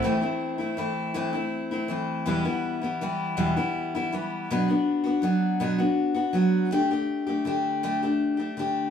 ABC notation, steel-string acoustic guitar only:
X:1
M:6/8
L:1/16
Q:3/8=54
K:Ador
V:1 name="Steel-string acoustic guitar"
[A,,E,A,CE] [A,CE]2 [A,CE] [E,A,CE]2 [A,,E,A,CE] [A,CE]2 [A,CE] [E,A,CE]2 | [E,,B,,E,G,B,E] [E,G,B,E]2 [E,G,B,E] [E,G,B,E]2 [E,,B,,E,G,B,E] [E,G,B,E]2 [E,G,B,E] [E,G,B,E]2 | [B,,F,B,DF] [B,DF]2 [B,DF] [F,B,DF]2 [B,,F,B,DF] [B,DF]2 [B,DF] [F,B,DF]2 | [D,A,DG] [A,DG]2 [A,DG] [D,A,DG]2 [D,A,DG] [A,DG]2 [A,DG] [D,A,DG]2 |]